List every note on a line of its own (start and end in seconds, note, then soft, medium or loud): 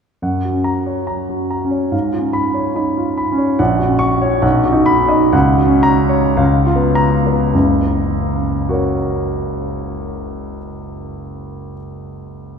0.22 1.89 F#2 soft
0.22 0.56 F#5 soft
0.45 0.78 F#4 soft
0.51 0.96 C#4 soft
0.64 0.99 A#5 medium
0.86 1.21 C#5 soft
1.07 1.42 A#5 soft
1.29 1.63 F#4 soft
1.51 1.85 A#5 soft
1.65 1.93 C#4 soft
1.71 1.92 C#5 soft
1.92 3.55 G#2 medium
1.92 2.26 F5 soft
2.13 2.47 F4 soft
2.19 2.64 C#4 soft
2.33 2.67 B5 medium
2.54 2.88 C#5 soft
2.76 3.04 D#4 soft
2.76 3.10 B5 soft
2.97 3.30 F4 soft
3.17 3.51 B5 medium
3.32 3.59 C#4 medium
3.38 3.59 C#5 medium
3.59 4.41 A#1 medium
3.59 3.92 F#5 medium
3.79 4.13 F#4 soft
3.86 4.31 C#4 soft
3.99 4.34 C#6 medium
4.21 4.43 C#5 medium
4.42 5.31 B1 medium
4.42 4.78 F#5 medium
4.65 5.01 F#4 medium
4.72 5.21 D#4 medium
4.86 5.24 B5 medium
5.09 5.33 D#5 medium
5.33 6.35 C#2 medium
5.33 5.74 F#5 medium
5.57 6.00 F#4 medium
5.67 6.24 C#4 medium
5.83 6.27 A#5 medium
6.09 6.38 C#5 medium
6.37 7.51 C#2 medium
6.37 6.84 F5 medium
6.66 7.14 F4 medium
6.76 7.40 B3 medium
6.95 7.43 A#5 medium
7.27 7.55 B4 medium
7.54 10.58 F#1 medium
7.54 10.58 C#2 medium
8.69 11.72 F#4 medium
8.69 11.74 A#4 soft
8.73 11.76 C#5 soft